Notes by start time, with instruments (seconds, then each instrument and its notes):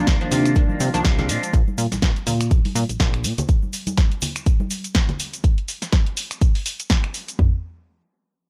Already playing: analog polysynth D#3 F3 A#3 D4
0.06 analog synth bass C2, clean electric guitar D#3 A#3 D4 F4, kick, snare, closed hi-hat, shaker
0.20 analog polysynth D#3 F3 A#3 D4, clean electric guitar A#3 D4 F4, closed hi-hat, shaker
0.30 analog synth bass C3, clean electric guitar D#3 A#3 D4 F4, open hi-hat, low conga, shaker
0.44 clean electric guitar A#3 D4 F4, finger snap, closed hi-hat, shaker
0.55 analog synth bass C2, analog polysynth D#3 F3 A#3 D4, kick, closed hi-hat, shaker
0.68 clean electric guitar A#3 D4 F4, high conga, shaker
0.80 analog synth bass C3, open hi-hat, shaker
0.94 analog synth bass C2, analog polysynth D#3 F3 A#3 D4, closed hi-hat, shaker
1.04 analog synth bass C2, clean electric guitar D#3 A#3 D4 F4, kick, snare, closed hi-hat, shaker
1.18 analog polysynth F3 G#3 C4 D4, snare, closed hi-hat, low conga, shaker
1.28 analog synth bass A#2, clean electric guitar F3 G#3 D4 F4, open hi-hat, shaker
1.42 clean electric guitar G#3 D4 F4, closed hi-hat, shaker
1.53 analog synth bass A#1, kick, closed hi-hat, shaker
1.67 high conga, shaker
1.78 analog synth bass A#2, open hi-hat, shaker
1.92 analog synth bass A#1, snare, closed hi-hat, high conga, shaker
2.02 analog synth bass A#1, kick, snare, closed hi-hat, shaker
2.16 closed hi-hat, shaker
2.27 analog synth bass A#2, open hi-hat, low conga, shaker
2.40 finger snap, closed hi-hat, shaker
2.51 analog synth bass A#1, kick, closed hi-hat, high conga, shaker
2.65 open hi-hat, high conga, shaker
2.75 analog synth bass A#2, open hi-hat, shaker
2.89 analog synth bass A#1, closed hi-hat, shaker
3.00 analog synth bass A#1, kick, snare, closed hi-hat, shaker
3.14 finger snap, closed hi-hat, shaker
3.24 analog synth bass A#2, open hi-hat, shaker
3.38 closed hi-hat, low conga, shaker
3.49 kick, closed hi-hat, shaker
3.62 high conga, shaker
3.73 open hi-hat, shaker
3.87 closed hi-hat, high conga, shaker
3.97 kick, snare, closed hi-hat, shaker
4.12 closed hi-hat, shaker
4.21 open hi-hat, low conga, shaker
4.36 finger snap, closed hi-hat, shaker
4.46 kick, closed hi-hat, shaker
4.60 high conga, shaker
4.70 open hi-hat, shaker
4.84 closed hi-hat, shaker
4.95 kick, snare, closed hi-hat, shaker
5.09 snare, closed hi-hat, low conga, shaker
5.19 open hi-hat, shaker
5.33 closed hi-hat, shaker
5.44 kick, closed hi-hat, shaker
5.58 closed hi-hat
5.68 open hi-hat, shaker
5.82 snare, closed hi-hat, shaker
5.92 kick, snare, closed hi-hat, shaker
6.06 closed hi-hat
6.17 open hi-hat, shaker
6.31 finger snap, closed hi-hat, shaker
6.41 kick, closed hi-hat, shaker
6.55 open hi-hat
6.66 open hi-hat, shaker
6.80 closed hi-hat, shaker
6.90 kick, snare, closed hi-hat, shaker
7.04 finger snap, closed hi-hat
7.14 open hi-hat, shaker
7.28 closed hi-hat, shaker
7.39 kick, floor tom